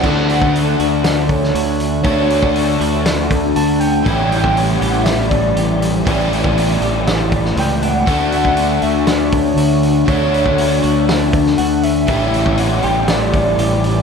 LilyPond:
<<
  \new Staff \with { instrumentName = "Soft synth lead" } { \time 4/4 \key d \major \tempo 4 = 120 fis''8 fis''4 e''8 d''8 cis''4 r8 | cis''2 r4 a''8 g''8~ | g''8 g''4 fis''8 e''8 d''4 r8 | d''2 r4 g''8 fis''8~ |
fis''8 fis''4 e''8 d''8 cis''4 r8 | cis''2 r4 fis''8 e''8 | e''8 e''8 fis''8 g''8 d''2 | }
  \new Staff \with { instrumentName = "Clean electric guitar" } { \time 4/4 \key d \major a8 a4 fis'8 a4 fis'4 | a8 a4 fis'8 a4 fis'8 cis'8 | e8 e4 g'8 a4 g'4 | e8 e4 g'8 a4 g'8 d'8 |
a8 a4 fis'8 a4 fis'4 | a8 a4 fis'8 a4 fis'8 cis'8 | e8 e4 g'8 a4 g'4 | }
  \new Staff \with { instrumentName = "Overdriven electric guitar" } { \time 4/4 \key d \major <d a d' fis'>1 | <d a d' fis'>1 | <a, e g cis' g'>1 | <a, e g cis' g'>1 |
<d a d' fis'>1 | <d a d' fis'>1 | <a, e g cis' g'>1 | }
  \new Staff \with { instrumentName = "Overdriven electric guitar" } { \time 4/4 \key d \major <d a d' fis'>1 | <d a d' fis'>1 | <a, e g cis' g'>1 | <a, e g cis' g'>1 |
<d a d' fis'>1 | <d a d' fis'>1 | <a, e g cis' g'>1 | }
  \new Staff \with { instrumentName = "Fingered electric bass" } { \clef bass \time 4/4 \key d \major d,4. d,4. d,4 | d,4. d,4. d,4 | a,,4. a,,4. a,,4 | a,,4. a,,4. cis,4 |
d,4. d,4. d,4 | d,4. d,4. d,4 | a,,4. a,,4. a,,4 | }
  \new DrumStaff \with { instrumentName = "Drums" } \drummode { \time 4/4 <cymc bd>8 hho16 bd16 hho8 hho8 <hho sn>8 <hho bd>16 sn16 hho8 hho8 | <hho bd>8 hho16 bd16 hho8 hho8 <hho sn>8 <hho bd>8 hho8 hho8 | <hho bd>8 hho16 bd16 hho8 hho8 <hho sn>8 <hho bd>8 hho8 hho8 | <hho bd>8 hho16 bd16 hho8 hho8 <hho sn>8 <hho bd>16 sn16 hho8 hho8 |
<hho bd>8 hho16 bd16 hho8 hho8 <hho sn>8 <hho bd>8 hho8 hho8 | <hho bd>8 hho16 bd16 hho8 hho8 <hho sn>8 <hho bd>16 sn16 hho8 hho8 | <hho bd>8 hho16 bd16 hho8 hho8 <hho sn>8 <hho bd>8 hho8 hho8 | }
>>